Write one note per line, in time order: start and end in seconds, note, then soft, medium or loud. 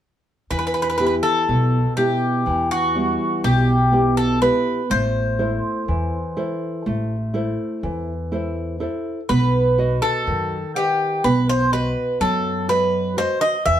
0.50 1.19 E2 medium
0.50 1.45 E3 medium
0.50 0.58 B4 medium
0.59 0.66 B4 medium
0.67 0.73 B4 medium
0.74 0.81 B4 medium
0.82 0.88 B4 medium
0.90 0.97 B4 medium
0.98 1.78 B3 soft
0.98 1.78 E4 soft
0.98 1.78 G4 soft
0.98 1.05 B4 medium
1.07 1.15 B4 soft
1.23 1.93 A4 medium
1.48 1.83 B1 medium
1.48 2.43 B2 medium
1.97 2.75 B3 soft
1.97 2.75 E4 soft
1.97 2.71 G4 medium
1.97 2.76 G4 medium
2.46 3.15 E2 medium
2.46 3.41 E3 medium
2.71 3.44 F#4 medium
2.95 3.73 G3 soft
2.95 3.73 B3 soft
2.95 3.73 E4 soft
3.44 4.47 B1 medium
3.44 4.38 B2 medium
3.44 4.17 G4 medium
3.92 4.40 B3 soft
3.92 4.41 E4 soft
3.92 4.41 G4 medium
4.17 4.40 A4 medium
4.41 4.81 B3 soft
4.41 4.81 E4 soft
4.41 4.81 G4 medium
4.41 4.90 B4 medium
4.90 5.59 A1 medium
4.90 5.85 A3 medium
4.90 8.77 C5 medium
5.39 6.17 E4 soft
5.39 6.17 A4 soft
5.39 6.17 C5 soft
5.88 6.22 E2 medium
5.88 6.83 E3 medium
6.37 7.15 E4 soft
6.37 7.15 A4 soft
6.37 7.15 C5 medium
6.86 7.54 A1 medium
6.86 7.80 A3 medium
7.34 8.12 E4 soft
7.34 8.12 A4 soft
7.34 8.13 C5 soft
7.83 8.85 E2 medium
7.83 8.78 E3 medium
8.32 8.79 E4 soft
8.32 8.79 A4 soft
8.32 8.80 C5 medium
8.80 9.19 E4 soft
8.80 9.19 A4 soft
8.80 9.20 C5 soft
9.29 9.98 B1 medium
9.29 10.24 B3 medium
9.29 10.02 B4 medium
9.78 10.56 F#4 soft
9.78 10.56 B4 soft
9.78 10.56 D#5 medium
10.02 10.71 A4 medium
10.27 10.61 F#2 medium
10.27 11.21 D#3 medium
10.75 11.26 G4 medium
10.75 11.54 B4 soft
10.75 11.54 D#5 soft
10.75 11.53 F#5 soft
11.24 11.92 B1 medium
11.24 12.18 B3 medium
11.24 11.47 B4 medium
11.49 11.73 C5 medium
11.72 12.50 F#4 soft
11.72 12.50 B4 soft
11.72 12.18 B4 medium
11.72 12.50 D#5 medium
12.20 13.22 F#2 medium
12.20 13.15 F#3 medium
12.20 12.69 A4 medium
12.68 13.16 F#4 soft
12.68 13.16 B4 soft
12.68 13.18 B4 medium
12.68 13.17 D#5 soft
13.17 13.56 F#4 soft
13.17 13.56 B4 soft
13.17 13.41 C5 medium
13.17 13.57 D#5 soft
13.41 13.65 D#5 medium
13.65 13.80 E2 medium
13.65 13.80 E3 medium
13.65 13.80 E5 medium